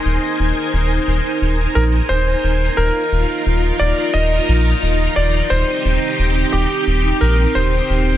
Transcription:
<<
  \new Staff \with { instrumentName = "Electric grand piano" } { \time 4/4 \key bes \mixolydian \tempo 4 = 88 r2 r8 bes'8 c''4 | bes'4 r8 d''8 ees''4. d''8 | c''4. g'4 bes'8 c''4 | }
  \new Staff \with { instrumentName = "String machine" } { \time 4/4 \key bes \mixolydian <ees' bes' c'' aes''>1 | <ees' f' bes'>1 | <c' g'>1 | }
  \new Staff \with { instrumentName = "Analog synth bass" } { \clef bass \time 4/4 \key bes \mixolydian ees,,8 ees,,8 ees,,8 ees,,8 ees,,8 bes,,8 ees,,8 ees,,8 | ees,,8 ees,,8 ees,,8 ees,,8 ees,,8 bes,,8 ees,,8 ees,,8 | ees,,8 ees,,8 ees,,8 ees,,8 ees,,8 bes,,8 ees,,8 ees,,8 | }
>>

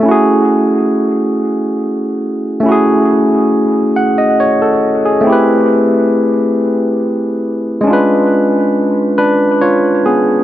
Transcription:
\new Staff \with { instrumentName = "Tine electric piano" } { \time 6/8 \key a \lydian \tempo 4. = 46 << { r2. | r4. fis''16 dis''16 cis''16 a'8 gis'16~ | gis'16 r2 r8. | r4. <d' b'>8 <eis' cis''>8 <b gis'>8 | } \\ { <a cis' e' fis' gis'>2. | <a cis' e' fis' gis'>2. | <a c' e' g' b'>2. | <gis cis' d' eis' b'>2. | } >> }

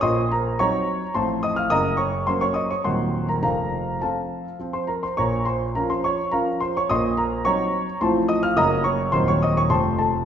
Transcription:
<<
  \new Staff \with { instrumentName = "Grand piano" } { \time 3/4 \key f \phrygian \tempo 4 = 106 <ees'' c''' ees'''>8 <bes' bes''>8 <des'' bes'' des'''>4 <c'' a'' c'''>8 <ees'' ees'''>16 <f'' f'''>16 | <ees'' bes'' ees'''>8 <des'' des'''>8 <c'' c'''>16 <des'' des'''>16 <ees'' ees'''>16 <des'' des'''>16 <c'' ges'' c'''>8. <bes' bes''>16 | <bes' f'' bes''>4 <a' f'' a''>4 r16 <c'' c'''>16 <bes' bes''>16 <c'' c'''>16 | <des'' bes'' des'''>8 <c'' c'''>8 <bes' bes''>16 <c'' c'''>16 <des'' des'''>8 <bes' f'' bes''>8 <c'' c'''>16 <des'' des'''>16 |
<ees'' c''' ees'''>8 <bes' bes''>8 <des'' bes'' des'''>4 <c'' a'' c'''>8 <ees'' ees'''>16 <f'' f'''>16 | <ees'' bes'' ees'''>8 <des'' des'''>8 <c'' c'''>16 <des'' des'''>16 <ees'' ees'''>16 <des'' des'''>16 <c'' a'' c'''>8 <a' a''>8 | }
  \new Staff \with { instrumentName = "Grand piano" } { \clef bass \time 3/4 \key f \phrygian <bes,, bes,>4 <ges c' ees'>4 <a,, a, f c' f'>4 | <ges,, ges,>4 <ges bes des'>4 <ees,, ees, ges c' ees'>4 | <f,, f,>4 <f c' f'>4 <f c' f'>4 | <bes,, bes,>4 <f des' f'>4 <f des' f'>4 |
<bes,, bes,>4 <ges c' ees'>4 <a,, a, f c' f'>4 | <ges,, ges, ges bes des'>4 <ees,, ees, ges c' ees'>4 <f,, f, f a c'>4 | }
>>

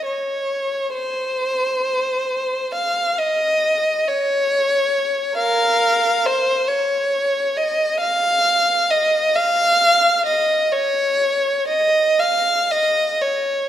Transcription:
\new Staff \with { instrumentName = "Violin" } { \time 6/8 \key des \major \tempo 4. = 45 des''4 c''2 | f''8 ees''4 des''4. | \key f \phrygian <bes' f''>4 c''8 des''4 ees''8 | f''4 ees''8 f''4 ees''8 |
des''4 ees''8 f''8 ees''8 des''8 | }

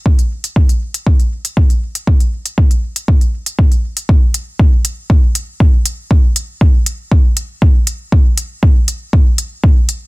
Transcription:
\new DrumStaff \with { instrumentName = "Drums" } \drummode { \time 4/4 \tempo 4 = 119 bd16 hh8 hh16 bd16 hh8 hh16 bd16 hh8 hh16 bd16 hh8 hh16 | bd16 hh8 hh16 bd16 hh8 hh16 bd16 hh8 hh16 bd16 hh8 hh16 | bd8 hh8 bd8 hh8 bd8 hh8 bd8 hh8 | bd8 hh8 bd8 hh8 bd8 hh8 bd8 hh8 |
bd8 hh8 bd8 hh8 bd8 hh8 bd8 hh8 | }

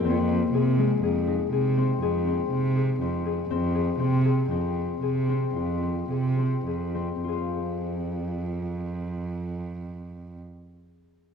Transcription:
<<
  \new Staff \with { instrumentName = "Harp" } { \time 7/4 \key f \minor \tempo 4 = 114 c'4 aes'8 aes8 aes'8 ees'8 aes'8 c'8 aes'8 c'4 aes'8 c'8 aes'8 | c'8 aes'8 c'8 aes'8 c'4 aes'8 c'8 f'8 c'8 aes'8 c'8 aes'8 c'8 | <f' aes' c'' f''>1.~ <f' aes' c'' f''>4 | }
  \new Staff \with { instrumentName = "Cello" } { \clef bass \time 7/4 \key f \minor f,4 c4 f,4 c4 f,4 c4 f,4 | f,4 c4 f,4 c4 f,4 c4 f,4 | f,1.~ f,4 | }
>>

